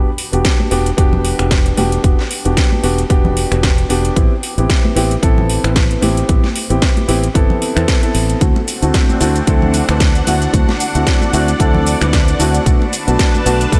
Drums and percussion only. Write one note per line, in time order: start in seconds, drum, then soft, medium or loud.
0.18 open hi-hat loud
0.33 closed hi-hat medium
0.45 kick loud
0.45 snare loud
0.45 closed hi-hat medium
0.60 high conga medium
0.71 open hi-hat loud
0.86 closed hi-hat medium
0.98 kick loud
0.98 closed hi-hat medium
1.13 low conga medium
1.25 open hi-hat medium
1.39 finger snap medium
1.39 closed hi-hat soft
1.51 kick loud
1.51 snare loud
1.51 closed hi-hat medium
1.66 closed hi-hat soft
1.77 open hi-hat loud
1.77 high conga medium
1.92 closed hi-hat medium
2.04 kick loud
2.04 closed hi-hat medium
2.19 snare soft
2.31 open hi-hat loud
2.45 closed hi-hat soft
2.57 kick loud
2.57 snare loud
2.57 closed hi-hat medium
2.72 high conga medium
2.84 open hi-hat loud
2.98 closed hi-hat medium
3.10 kick loud
3.10 closed hi-hat medium
3.25 low conga loud
3.37 open hi-hat loud
3.52 finger snap medium
3.52 closed hi-hat soft
3.63 kick loud
3.63 snare loud
3.63 closed hi-hat medium
3.78 closed hi-hat soft
3.90 open hi-hat loud
4.05 closed hi-hat soft
4.16 kick loud
4.16 closed hi-hat medium
4.43 open hi-hat loud
4.58 closed hi-hat soft
4.70 kick loud
4.70 snare loud
4.70 closed hi-hat medium
4.85 high conga medium
4.96 open hi-hat loud
5.11 closed hi-hat soft
5.23 kick loud
5.23 closed hi-hat medium
5.38 low conga medium
5.50 open hi-hat loud
5.64 finger snap medium
5.64 closed hi-hat soft
5.76 kick loud
5.76 snare loud
5.76 closed hi-hat medium
5.91 closed hi-hat soft
6.02 open hi-hat loud
6.02 high conga loud
6.17 closed hi-hat soft
6.29 kick loud
6.29 closed hi-hat medium
6.44 snare soft
6.44 high conga medium
6.56 open hi-hat loud
6.70 closed hi-hat soft
6.82 kick loud
6.82 snare loud
6.82 closed hi-hat medium
6.97 closed hi-hat soft
6.97 high conga medium
7.09 open hi-hat loud
7.23 closed hi-hat soft
7.35 kick loud
7.35 closed hi-hat medium
7.50 low conga medium
7.62 open hi-hat loud
7.77 finger snap medium
7.77 closed hi-hat soft
7.88 kick loud
7.88 snare loud
7.88 closed hi-hat medium
8.03 closed hi-hat soft
8.15 open hi-hat loud
8.30 closed hi-hat soft
8.41 kick loud
8.41 closed hi-hat medium
8.41 shaker soft
8.56 muted conga medium
8.68 open hi-hat loud
8.68 shaker medium
8.82 closed hi-hat soft
8.82 shaker soft
8.94 kick loud
8.94 snare loud
8.94 closed hi-hat medium
8.94 shaker soft
9.09 high conga medium
9.09 shaker soft
9.21 open hi-hat loud
9.21 shaker medium
9.36 closed hi-hat soft
9.36 shaker soft
9.47 kick loud
9.47 closed hi-hat medium
9.47 shaker soft
9.62 low conga medium
9.74 open hi-hat loud
9.74 shaker medium
9.89 finger snap medium
9.89 closed hi-hat soft
9.89 shaker soft
10.00 kick loud
10.00 snare loud
10.00 closed hi-hat medium
10.00 shaker soft
10.15 closed hi-hat soft
10.15 shaker soft
10.27 open hi-hat loud
10.27 high conga medium
10.27 shaker medium
10.42 closed hi-hat soft
10.42 shaker soft
10.54 kick loud
10.54 closed hi-hat medium
10.54 shaker soft
10.69 snare soft
10.69 muted conga medium
10.80 open hi-hat loud
10.80 shaker medium
10.95 closed hi-hat medium
10.95 shaker soft
11.07 kick loud
11.07 snare loud
11.07 closed hi-hat medium
11.07 shaker soft
11.21 high conga medium
11.21 shaker soft
11.33 open hi-hat loud
11.33 shaker medium
11.48 closed hi-hat soft
11.48 shaker soft
11.60 kick loud
11.60 closed hi-hat medium
11.60 shaker soft
11.75 low conga medium
11.87 open hi-hat medium
11.87 shaker medium
12.01 finger snap medium
12.01 closed hi-hat medium
12.01 muted conga medium
12.01 shaker soft
12.13 kick loud
12.13 snare loud
12.13 closed hi-hat medium
12.13 shaker soft
12.28 closed hi-hat soft
12.28 shaker soft
12.40 open hi-hat loud
12.40 shaker medium
12.54 closed hi-hat medium
12.54 shaker soft
12.66 kick loud
12.66 closed hi-hat medium
12.66 shaker soft
12.82 muted conga medium
12.93 open hi-hat loud
12.93 shaker medium
13.08 closed hi-hat medium
13.08 shaker soft
13.19 kick loud
13.19 snare loud
13.19 closed hi-hat medium
13.19 shaker soft
13.35 high conga medium
13.35 shaker soft
13.46 open hi-hat loud
13.46 shaker medium
13.61 closed hi-hat medium
13.61 shaker soft
13.72 kick loud
13.72 closed hi-hat medium
13.72 shaker soft